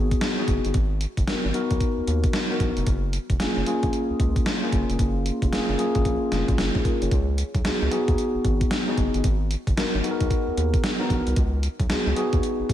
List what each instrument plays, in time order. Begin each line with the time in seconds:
Already playing: analog synth bass G#1, tine electric piano B3 D#4 F#4 G#4
0.11 kick, closed hi-hat
0.21 snare, closed hi-hat
0.38 tine electric piano B3 D#4 F#4 G#4
0.48 analog synth bass F#1, kick, closed hi-hat
0.65 analog synth bass G1, closed hi-hat
0.74 analog synth bass G#1, kick, closed hi-hat
1.01 closed hi-hat
1.17 analog synth bass F#1, kick, closed hi-hat
1.27 analog synth bass G#1, tine electric piano B3 D#4 F#4 A#4, snare, closed hi-hat
1.45 analog synth bass G#1
1.54 tine electric piano B3 D#4 F#4 A#4, closed hi-hat
1.71 analog synth bass B1, kick, closed hi-hat
1.80 kick, closed hi-hat
1.98 analog synth bass D#2
2.07 analog synth bass D#2, closed hi-hat
2.24 kick, closed hi-hat
2.33 snare, closed hi-hat
2.50 tine electric piano B3 D#4 F#4 A#4
2.60 analog synth bass A#1, kick, closed hi-hat
2.77 analog synth bass F1, closed hi-hat
2.87 analog synth bass F#1, kick, closed hi-hat
3.13 closed hi-hat
3.30 analog synth bass F1, kick, closed hi-hat
3.40 analog synth bass F#1, tine electric piano A#3 C#4 F4 G#4, snare, closed hi-hat
3.57 analog synth bass F#1
3.66 tine electric piano A#3 C#4 F4 G#4, closed hi-hat
3.83 analog synth bass A#1, kick, closed hi-hat
3.93 closed hi-hat
4.10 analog synth bass C#2
4.20 analog synth bass C#2, kick, closed hi-hat
4.36 kick, closed hi-hat
4.46 snare, closed hi-hat
4.63 tine electric piano A#3 C#4 F4 G#4
4.72 analog synth bass F#1, kick, closed hi-hat
4.90 analog synth bass F1, closed hi-hat
4.99 analog synth bass F#1, kick, closed hi-hat
5.26 closed hi-hat
5.42 analog synth bass F1, kick, closed hi-hat
5.52 analog synth bass F#1, tine electric piano A#3 C#4 F4 G#4, snare, closed hi-hat
5.69 analog synth bass F#1
5.78 tine electric piano A#3 C#4 F4 G#4, closed hi-hat
5.95 analog synth bass G#1, kick, closed hi-hat
6.05 analog synth bass A#1, kick, closed hi-hat
6.32 analog synth bass F1, snare, closed hi-hat
6.48 analog synth bass G#1, kick, closed hi-hat
6.58 analog synth bass F#1, snare, closed hi-hat
6.75 analog synth bass A#1, tine electric piano D#4 G#4, kick
6.85 tine electric piano F4 A#4, kick, closed hi-hat
7.02 analog synth bass F#1, tine electric piano G#4 C#5, closed hi-hat
7.11 analog synth bass C#2, kick, closed hi-hat
7.38 closed hi-hat
7.55 analog synth bass B1, kick, closed hi-hat
7.64 analog synth bass C#2, tine electric piano B3 D#4 F#4 G#4, snare, closed hi-hat
7.82 analog synth bass C#2
7.91 tine electric piano B3 D#4 F#4 G#4, closed hi-hat
8.08 analog synth bass D#2, kick, closed hi-hat
8.18 closed hi-hat
8.35 analog synth bass G#1
8.45 analog synth bass G#1, kick, closed hi-hat
8.61 kick, closed hi-hat
8.71 snare, closed hi-hat
8.87 tine electric piano B3 D#4 F#4 G#4
8.97 analog synth bass F#1, kick, closed hi-hat
9.14 analog synth bass G1, closed hi-hat
9.24 analog synth bass G#1, kick, closed hi-hat
9.51 closed hi-hat
9.67 analog synth bass F#1, kick, closed hi-hat
9.77 analog synth bass G#1, tine electric piano B3 D#4 F#4 A#4, snare, closed hi-hat
9.95 analog synth bass G#1
10.03 tine electric piano B3 D#4 F#4 G#4, closed hi-hat
10.11 tine electric piano A#4
10.20 analog synth bass B1, kick, closed hi-hat
10.30 kick, closed hi-hat
10.48 analog synth bass D#2
10.57 analog synth bass D#2, closed hi-hat
10.74 kick, closed hi-hat
10.84 snare, closed hi-hat
10.99 tine electric piano B3 D#4 F#4 A#4
11.10 analog synth bass A#1, kick, closed hi-hat
11.27 analog synth bass C2, closed hi-hat
11.36 analog synth bass C#2, kick, closed hi-hat
11.63 closed hi-hat
11.80 analog synth bass B1, kick, closed hi-hat
11.89 analog synth bass C#2, tine electric piano B3 D#4 F#4 G#4, snare, closed hi-hat
12.07 analog synth bass C#2
12.16 tine electric piano B3 D#4 F#4 G#4, closed hi-hat
12.33 analog synth bass D#2, kick, closed hi-hat
12.43 closed hi-hat
12.60 analog synth bass G#1
12.69 analog synth bass G#1, kick, closed hi-hat